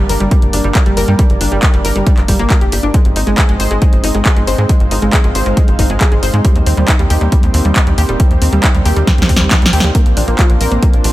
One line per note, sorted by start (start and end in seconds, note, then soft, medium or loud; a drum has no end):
0.00 2.91 G3 medium
0.00 2.91 A#3 medium
0.00 2.90 D4 medium
0.00 2.90 A#4 medium
0.00 2.90 D5 medium
0.09 0.17 G1 loud
0.09 0.13 A#4 medium
0.09 open hi-hat medium
0.20 0.28 G1 medium
0.20 0.26 G3 medium
0.20 closed hi-hat soft
0.31 0.35 G3 medium
0.31 kick loud
0.31 closed hi-hat medium
0.42 0.50 G1 medium
0.42 closed hi-hat soft
0.53 0.61 G1 medium
0.53 0.57 D4 medium
0.53 open hi-hat loud
0.64 0.72 G1 medium
0.64 0.70 G3 medium
0.64 closed hi-hat soft
0.75 0.81 G4 medium
0.75 kick loud
0.75 clap loud
0.75 closed hi-hat medium
0.86 0.94 G1 medium
0.86 0.90 G3 medium
0.86 closed hi-hat soft
0.97 1.05 G1 loud
0.97 1.00 A#4 medium
0.97 open hi-hat medium
1.08 1.15 G2 medium
1.08 1.14 G3 medium
1.08 closed hi-hat soft
1.19 1.22 G3 medium
1.19 kick loud
1.19 closed hi-hat medium
1.30 1.37 G1 medium
1.30 closed hi-hat soft
1.41 1.48 G1 loud
1.41 1.44 D4 medium
1.41 open hi-hat loud
1.52 1.59 G1 medium
1.52 1.57 G3 medium
1.63 1.68 G4 medium
1.63 kick loud
1.63 clap loud
1.63 closed hi-hat medium
1.74 1.81 G1 medium
1.74 1.77 G3 medium
1.74 closed hi-hat soft
1.85 1.92 G1 loud
1.85 1.88 A#4 loud
1.85 open hi-hat medium
1.96 2.03 G1 medium
1.96 2.01 G3 medium
1.96 closed hi-hat soft
2.07 2.10 G3 medium
2.07 kick loud
2.07 closed hi-hat medium
2.18 2.25 G1 medium
2.18 clap soft
2.18 closed hi-hat soft
2.28 2.36 G1 medium
2.28 2.34 G3 medium
2.28 kick medium
2.28 open hi-hat loud
2.39 2.47 G1 medium
2.39 2.43 A#3 loud
2.39 closed hi-hat soft
2.50 2.56 A#4 medium
2.50 kick loud
2.50 clap loud
2.50 closed hi-hat medium
2.61 2.69 F1 medium
2.61 2.65 G4 medium
2.61 closed hi-hat soft
2.72 2.80 G1 loud
2.72 2.78 G4 medium
2.72 open hi-hat loud
2.83 2.91 G1 medium
2.83 2.89 D4 medium
2.83 closed hi-hat soft
2.94 6.41 G#3 medium
2.94 2.98 G#3 medium
2.94 6.41 C4 medium
2.94 9.91 D#4 medium
2.94 11.13 C5 medium
2.94 4.68 D#5 medium
2.94 kick loud
2.94 closed hi-hat medium
3.05 3.13 G#1 medium
3.05 closed hi-hat soft
3.16 3.24 G#1 loud
3.16 3.19 D#4 medium
3.16 open hi-hat medium
3.27 3.35 G#1 medium
3.27 3.33 G#3 medium
3.27 closed hi-hat soft
3.38 3.43 G#4 medium
3.38 kick loud
3.38 clap loud
3.38 closed hi-hat medium
3.49 3.56 G#1 medium
3.49 3.52 G#3 medium
3.49 closed hi-hat soft
3.60 3.67 G#1 loud
3.60 3.63 C5 loud
3.60 open hi-hat medium
3.71 3.78 G#1 medium
3.71 3.76 G#3 medium
3.71 closed hi-hat soft
3.82 3.85 G#3 medium
3.82 kick loud
3.82 closed hi-hat medium
3.93 4.00 G#1 medium
3.93 closed hi-hat soft
4.04 4.11 G#1 loud
4.04 4.07 D#4 medium
4.04 open hi-hat loud
4.15 4.22 G#1 medium
4.15 4.20 G#3 medium
4.15 closed hi-hat soft
4.26 4.31 G#4 medium
4.26 kick loud
4.26 clap loud
4.26 closed hi-hat medium
4.37 4.44 G#1 medium
4.37 4.40 G#3 medium
4.37 closed hi-hat soft
4.47 4.55 G#1 loud
4.47 4.51 C5 medium
4.47 open hi-hat medium
4.58 4.66 G#2 medium
4.58 4.64 G#3 medium
4.58 closed hi-hat soft
4.69 4.73 G#3 medium
4.69 6.43 F5 medium
4.69 kick loud
4.69 closed hi-hat medium
4.80 4.88 G#1 medium
4.80 closed hi-hat soft
4.91 4.99 G#1 loud
4.91 4.95 D#4 medium
4.91 open hi-hat medium
5.02 5.10 G#1 medium
5.02 5.08 G#3 medium
5.02 closed hi-hat soft
5.13 5.19 G#4 medium
5.13 kick loud
5.13 clap loud
5.13 closed hi-hat medium
5.24 5.32 G#1 medium
5.24 5.27 G#3 medium
5.24 closed hi-hat soft
5.35 5.43 G#1 loud
5.35 5.38 C5 loud
5.35 open hi-hat medium
5.46 5.53 G#1 medium
5.46 5.52 G#3 medium
5.46 closed hi-hat soft
5.57 5.60 G#3 medium
5.57 kick loud
5.57 closed hi-hat medium
5.68 5.75 G#1 medium
5.68 closed hi-hat soft
5.79 5.86 G#1 loud
5.79 5.82 D#4 medium
5.79 kick medium
5.79 open hi-hat medium
5.90 5.97 G#1 medium
5.90 5.95 G#3 medium
5.90 closed hi-hat soft
6.01 6.06 G#4 medium
6.01 kick loud
6.01 clap loud
6.01 closed hi-hat medium
6.12 6.19 G#1 medium
6.12 6.15 G#3 medium
6.12 closed hi-hat soft
6.23 6.30 G#1 loud
6.23 6.26 C5 loud
6.23 open hi-hat medium
6.34 6.41 G#2 medium
6.34 6.39 G#3 medium
6.34 closed hi-hat soft
6.45 6.48 G3 medium
6.45 11.13 A#3 medium
6.45 11.13 C4 medium
6.45 9.91 G4 medium
6.45 kick loud
6.45 closed hi-hat medium
6.56 6.63 D#2 medium
6.56 closed hi-hat soft
6.66 6.74 D#2 loud
6.66 6.70 C4 medium
6.66 open hi-hat medium
6.77 6.85 D#2 loud
6.77 6.83 G3 medium
6.77 closed hi-hat soft
6.88 6.94 D#4 medium
6.88 kick loud
6.88 clap loud
6.88 closed hi-hat medium
6.99 7.07 D#2 medium
6.99 7.03 G3 medium
6.99 closed hi-hat soft
7.10 7.18 D#2 loud
7.10 7.14 G4 loud
7.10 open hi-hat medium
7.21 7.29 D#2 medium
7.21 7.27 G3 medium
7.21 closed hi-hat soft
7.32 7.36 G3 medium
7.32 kick loud
7.32 closed hi-hat medium
7.43 7.51 D#2 medium
7.43 closed hi-hat soft
7.54 7.62 D#2 loud
7.54 7.57 C4 medium
7.54 open hi-hat medium
7.65 7.72 D#2 medium
7.65 7.71 G3 medium
7.65 closed hi-hat soft
7.76 7.81 D#4 medium
7.76 kick loud
7.76 clap loud
7.76 closed hi-hat medium
7.87 7.94 D#2 medium
7.87 7.90 G3 medium
7.87 closed hi-hat soft
7.98 8.05 D#2 loud
7.98 8.01 G4 loud
7.98 open hi-hat medium
8.09 8.16 D#1 medium
8.09 8.14 G3 medium
8.09 closed hi-hat soft
8.20 8.23 G3 medium
8.20 kick loud
8.20 closed hi-hat loud
8.31 8.38 D#2 medium
8.31 closed hi-hat soft
8.42 8.49 D#2 medium
8.42 8.45 C4 medium
8.42 open hi-hat loud
8.53 8.60 D#2 medium
8.53 8.58 G3 medium
8.53 closed hi-hat soft
8.64 8.69 D#4 medium
8.64 kick loud
8.64 clap loud
8.64 closed hi-hat medium
8.75 8.82 D#2 medium
8.75 8.78 G3 medium
8.75 closed hi-hat soft
8.86 8.93 D#2 medium
8.86 8.89 G4 loud
8.86 open hi-hat medium
8.96 9.04 D#2 medium
8.96 9.02 G3 medium
8.96 closed hi-hat soft
9.07 9.11 G3 medium
9.07 kick loud
9.07 snare medium
9.07 closed hi-hat medium
9.18 9.26 D#2 medium
9.18 snare medium
9.18 closed hi-hat soft
9.29 9.37 D#2 loud
9.29 9.33 C4 medium
9.29 kick medium
9.29 open hi-hat loud
9.36 9.48 D#2 medium
9.36 9.46 G3 medium
9.36 snare medium
9.36 closed hi-hat soft
9.51 9.57 D#4 medium
9.51 kick loud
9.51 snare medium
9.51 clap loud
9.51 closed hi-hat medium
9.62 9.70 C2 medium
9.62 9.65 G3 medium
9.62 snare medium
9.62 closed hi-hat soft
9.73 9.80 D#2 medium
9.73 9.76 G4 loud
9.73 open hi-hat medium
9.80 9.91 D#2 medium
9.80 9.89 G3 medium
9.80 snare loud
9.80 closed hi-hat soft
9.95 9.98 A#3 medium
9.95 11.13 D4 medium
9.95 11.13 F4 medium
9.95 kick loud
9.95 closed hi-hat loud
10.06 10.13 A#1 medium
10.06 closed hi-hat soft
10.17 10.24 A#1 loud
10.17 10.20 D4 medium
10.17 open hi-hat loud
10.28 10.35 A#1 medium
10.28 10.33 A#3 medium
10.28 closed hi-hat soft
10.39 10.44 F4 medium
10.39 kick loud
10.39 clap loud
10.39 closed hi-hat medium
10.50 10.57 A#1 medium
10.50 10.53 A#3 medium
10.50 closed hi-hat soft
10.61 10.68 A#1 loud
10.61 10.64 A#4 loud
10.61 open hi-hat medium
10.72 10.79 A#1 medium
10.72 10.77 A#3 medium
10.72 closed hi-hat soft
10.83 10.86 A#3 medium
10.83 kick loud
10.83 closed hi-hat medium
10.93 11.01 A#1 medium
10.93 closed hi-hat soft
11.04 11.12 A#1 loud
11.04 11.08 D4 medium
11.04 open hi-hat loud